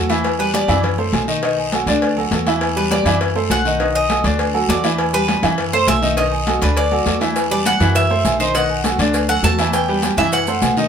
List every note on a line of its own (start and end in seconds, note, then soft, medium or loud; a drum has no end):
0.00 0.63 E2 medium
0.09 0.34 E3 loud
0.09 0.34 E4 loud
0.09 0.34 E5 medium
0.09 cowbell medium
0.09 high conga medium
0.09 low agogo medium
0.09 short guiro medium
0.24 cowbell loud
0.24 high conga soft
0.24 low agogo loud
0.24 long guiro medium
0.39 0.51 G3 medium
0.39 0.51 G4 medium
0.39 0.51 B4 medium
0.39 0.54 B4 medium
0.39 high conga soft
0.39 low agogo medium
0.54 0.66 G3 medium
0.54 0.66 G4 medium
0.54 0.66 B4 medium
0.54 0.82 D5 loud
0.54 cowbell medium
0.54 high conga medium
0.54 low timbale medium
0.54 low agogo medium
0.54 short guiro medium
0.68 1.10 F#2 loud
0.68 0.93 E3 loud
0.68 0.93 E4 loud
0.68 0.93 E5 loud
0.68 cowbell medium
0.68 low conga medium
0.68 low agogo loud
0.68 short guiro medium
0.83 cowbell loud
0.83 high conga soft
0.83 low conga medium
0.83 long guiro medium
0.98 1.23 A3 medium
0.98 1.23 A4 medium
0.98 1.23 C5 medium
0.98 high conga soft
0.98 low agogo medium
1.13 1.82 B1 medium
1.13 cowbell medium
1.13 high conga medium
1.13 low timbale medium
1.13 low agogo loud
1.13 short guiro medium
1.28 1.40 D#3 medium
1.28 1.40 D#4 medium
1.28 1.40 D#5 medium
1.28 short guiro medium
1.43 1.67 D#3 medium
1.43 1.67 D#4 medium
1.43 1.68 D#5 medium
1.43 cowbell loud
1.43 low agogo medium
1.43 long guiro medium
1.57 high conga soft
1.57 low agogo medium
1.72 1.85 F#3 medium
1.72 1.85 F#4 medium
1.72 1.85 A4 medium
1.72 cowbell medium
1.72 high conga medium
1.72 low timbale medium
1.72 low agogo loud
1.72 short guiro medium
1.86 2.28 D2 loud
1.86 2.12 D3 loud
1.86 2.12 D4 loud
1.86 2.12 D5 medium
1.86 cowbell medium
1.86 high conga soft
1.86 short guiro medium
2.02 cowbell loud
2.02 high conga soft
2.02 low agogo medium
2.17 2.29 F#3 medium
2.17 2.30 F#4 medium
2.17 2.30 A4 medium
2.17 high conga soft
2.17 low agogo loud
2.31 3.00 E2 loud
2.31 2.44 F#3 medium
2.31 2.44 F#4 medium
2.31 2.45 A4 medium
2.31 cowbell medium
2.31 high conga medium
2.31 low timbale medium
2.31 short guiro medium
2.46 2.71 E3 medium
2.46 2.71 E4 medium
2.46 2.71 E5 medium
2.46 cowbell medium
2.46 high conga medium
2.46 low agogo medium
2.46 short guiro medium
2.61 cowbell loud
2.61 high conga soft
2.61 low agogo loud
2.61 long guiro medium
2.76 2.88 G3 medium
2.76 2.89 G4 medium
2.76 2.89 B4 medium
2.76 2.91 B4 medium
2.76 low agogo medium
2.91 3.03 G3 medium
2.91 3.03 G4 medium
2.91 3.04 B4 medium
2.91 3.19 D5 medium
2.91 cowbell medium
2.91 high conga medium
2.91 low timbale medium
2.91 low agogo medium
2.91 short guiro medium
3.05 3.47 F#2 loud
3.05 3.30 E3 loud
3.05 3.30 E4 loud
3.05 3.31 E5 medium
3.05 cowbell medium
3.05 low conga medium
3.05 low agogo loud
3.05 short guiro medium
3.20 cowbell loud
3.20 high conga soft
3.20 long guiro medium
3.35 3.60 A3 medium
3.35 3.60 A4 medium
3.35 3.60 C5 medium
3.35 high conga soft
3.35 low agogo medium
3.50 4.19 B1 medium
3.50 3.92 F#5 medium
3.50 cowbell medium
3.50 high conga medium
3.50 low timbale medium
3.50 low agogo loud
3.50 short guiro medium
3.65 3.77 D#3 medium
3.65 3.78 D#4 medium
3.65 3.78 D#5 medium
3.65 short guiro medium
3.80 4.04 D#3 medium
3.80 4.04 D#4 medium
3.80 4.05 D#5 medium
3.80 cowbell loud
3.80 low agogo medium
3.80 long guiro medium
3.95 4.23 D#5 medium
3.95 high conga soft
3.95 low agogo medium
4.09 4.22 F#3 medium
4.09 4.22 F#4 medium
4.09 4.22 A4 medium
4.09 cowbell medium
4.09 high conga medium
4.09 low timbale medium
4.09 low agogo loud
4.09 short guiro medium
4.24 4.66 D2 loud
4.24 4.49 D3 loud
4.24 4.49 D4 loud
4.24 4.49 D5 loud
4.24 cowbell medium
4.24 short guiro medium
4.39 cowbell loud
4.39 high conga soft
4.39 low agogo medium
4.39 long guiro medium
4.54 4.66 F#3 medium
4.54 4.66 F#4 medium
4.54 4.67 A4 medium
4.54 high conga soft
4.54 low agogo loud
4.68 5.37 E2 medium
4.68 4.81 F#3 medium
4.68 4.81 F#4 medium
4.68 4.82 A4 medium
4.68 5.11 D5 loud
4.68 cowbell medium
4.68 high conga medium
4.68 low timbale medium
4.68 short guiro medium
4.84 5.08 E3 medium
4.84 5.08 E4 medium
4.84 5.09 E5 medium
4.84 cowbell medium
4.84 high conga medium
4.84 low agogo medium
4.84 short guiro medium
4.98 cowbell loud
4.98 high conga soft
4.98 low agogo loud
4.98 long guiro medium
5.13 5.25 G3 medium
5.13 5.26 G4 medium
5.13 5.26 B4 medium
5.13 5.41 B4 loud
5.13 high conga soft
5.13 low agogo medium
5.28 5.40 G3 medium
5.28 5.40 G4 medium
5.28 5.41 B4 medium
5.28 cowbell medium
5.28 high conga medium
5.28 low timbale medium
5.28 low agogo medium
5.28 short guiro medium
5.43 5.84 F#2 loud
5.43 5.67 E3 loud
5.43 5.67 E4 loud
5.43 5.68 E5 loud
5.43 cowbell medium
5.43 low conga medium
5.43 low agogo loud
5.43 short guiro medium
5.58 cowbell loud
5.58 high conga soft
5.58 long guiro medium
5.73 5.97 A3 medium
5.73 5.97 A4 medium
5.73 5.87 C5 medium
5.73 5.98 C5 medium
5.73 high conga soft
5.73 low agogo medium
5.87 6.56 B1 medium
5.87 6.15 E5 loud
5.87 cowbell medium
5.87 high conga medium
5.87 low timbale medium
5.87 low agogo loud
5.87 short guiro medium
6.02 6.14 D#3 medium
6.02 6.15 D#4 medium
6.02 6.15 D#5 medium
6.02 high conga medium
6.02 short guiro medium
6.17 6.42 D#3 medium
6.17 6.42 D#4 medium
6.17 6.59 D#5 medium
6.17 6.42 D#5 medium
6.17 cowbell loud
6.17 high conga soft
6.17 low agogo medium
6.17 long guiro medium
6.32 high conga soft
6.32 low agogo medium
6.47 6.59 F#3 medium
6.47 6.59 F#4 medium
6.47 6.60 A4 medium
6.47 cowbell medium
6.47 high conga medium
6.47 low timbale medium
6.47 low agogo loud
6.47 short guiro medium
6.62 7.03 D2 medium
6.62 6.86 D3 loud
6.62 6.86 D4 medium
6.62 6.76 B4 medium
6.62 6.86 D5 medium
6.62 cowbell medium
6.62 high conga soft
6.62 short guiro medium
6.77 7.18 D5 medium
6.77 cowbell loud
6.77 high conga soft
6.77 low agogo medium
6.77 long guiro medium
6.91 7.04 F#3 medium
6.91 7.04 F#4 medium
6.91 7.04 A4 medium
6.91 high conga soft
6.91 low agogo loud
7.06 7.75 E2 medium
7.06 7.18 F#3 medium
7.06 7.18 F#4 medium
7.06 7.19 A4 medium
7.06 cowbell medium
7.06 high conga medium
7.06 low timbale medium
7.06 short guiro medium
7.21 7.45 E3 medium
7.21 7.46 E4 medium
7.21 7.46 E5 medium
7.21 cowbell medium
7.21 high conga medium
7.21 low agogo medium
7.21 short guiro medium
7.36 cowbell loud
7.36 high conga soft
7.36 low agogo loud
7.36 long guiro medium
7.36 maracas medium
7.51 7.63 G3 medium
7.51 7.63 G4 medium
7.51 7.63 B4 medium
7.51 7.65 D5 medium
7.51 high conga soft
7.51 low agogo medium
7.66 7.78 G3 medium
7.66 7.78 G4 medium
7.66 7.78 B4 medium
7.66 7.94 F#5 loud
7.66 cowbell medium
7.66 high conga loud
7.66 low timbale medium
7.66 low agogo medium
7.66 short guiro medium
7.66 maracas medium
7.80 8.22 F#2 loud
7.80 8.05 E3 loud
7.80 8.05 E4 loud
7.80 8.05 E5 medium
7.80 cowbell medium
7.80 low conga medium
7.80 low agogo loud
7.80 short guiro medium
7.80 maracas soft
7.95 8.37 E5 loud
7.95 cowbell loud
7.95 high conga soft
7.95 long guiro medium
7.95 maracas medium
8.10 8.35 A3 medium
8.10 8.35 A4 medium
8.10 8.35 C5 medium
8.10 high conga soft
8.10 low agogo medium
8.25 8.93 B1 loud
8.25 cowbell medium
8.25 high conga medium
8.25 low timbale medium
8.25 low agogo loud
8.25 short guiro medium
8.25 maracas medium
8.40 8.52 D#3 medium
8.40 8.52 D#4 medium
8.40 8.54 C5 medium
8.40 8.52 D#5 medium
8.40 short guiro medium
8.40 maracas soft
8.55 8.79 D#3 medium
8.55 8.79 D#4 medium
8.55 8.79 D#5 medium
8.55 8.96 F#5 medium
8.55 cowbell loud
8.55 high conga soft
8.55 low agogo medium
8.55 long guiro medium
8.55 maracas medium
8.70 high conga soft
8.70 low agogo medium
8.84 8.96 F#3 medium
8.84 8.97 F#4 medium
8.84 8.97 A4 medium
8.84 cowbell medium
8.84 high conga loud
8.84 low timbale medium
8.84 low agogo loud
8.84 short guiro medium
8.84 maracas medium
8.98 9.40 D2 loud
8.98 9.23 D3 loud
8.98 9.24 D4 loud
8.98 9.24 D5 loud
8.98 cowbell medium
8.98 high conga soft
8.98 short guiro medium
8.98 maracas soft
9.14 cowbell loud
9.14 high conga soft
9.14 low agogo medium
9.14 long guiro medium
9.14 maracas medium
9.29 9.41 F#3 medium
9.29 9.41 F#4 medium
9.29 9.41 A4 medium
9.29 9.43 F#5 loud
9.29 high conga soft
9.29 low agogo loud
9.43 10.12 E2 loud
9.43 9.56 F#3 medium
9.43 9.56 F#4 medium
9.43 9.56 A4 medium
9.43 9.71 A5 loud
9.43 cowbell medium
9.43 high conga medium
9.43 low timbale medium
9.43 short guiro medium
9.43 maracas medium
9.59 9.83 E3 medium
9.59 9.83 E4 medium
9.59 9.83 E5 medium
9.59 cowbell medium
9.59 high conga medium
9.59 low agogo medium
9.59 short guiro medium
9.59 maracas soft
9.73 10.15 G5 medium
9.73 cowbell loud
9.73 high conga soft
9.73 low agogo loud
9.73 long guiro medium
9.73 maracas medium
9.88 10.01 G3 medium
9.88 10.01 G4 medium
9.88 10.01 B4 medium
9.88 high conga soft
9.88 low agogo medium
10.02 10.15 G3 medium
10.02 10.15 G4 medium
10.02 10.16 B4 medium
10.02 cowbell medium
10.02 high conga loud
10.02 low timbale medium
10.02 low agogo medium
10.02 short guiro medium
10.02 maracas medium
10.17 10.59 F#2 loud
10.17 10.42 E3 loud
10.17 10.42 E4 medium
10.17 10.32 E5 loud
10.17 10.43 E5 medium
10.17 cowbell medium
10.17 low conga medium
10.17 low agogo loud
10.17 short guiro medium
10.17 maracas soft
10.32 10.74 F#5 loud
10.32 cowbell loud
10.32 high conga soft
10.32 long guiro medium
10.32 maracas medium
10.47 10.72 A3 medium
10.47 10.72 A4 medium
10.47 10.72 C5 medium
10.47 high conga soft
10.47 low agogo medium
10.47 maracas medium
10.62 10.88 B1 medium
10.62 cowbell medium
10.62 high conga medium
10.62 low timbale medium
10.62 low agogo loud
10.62 short guiro medium
10.62 maracas medium
10.77 10.88 D#3 medium
10.77 10.88 D#4 medium
10.77 10.88 D#5 loud
10.77 high conga medium
10.77 short guiro medium
10.77 maracas soft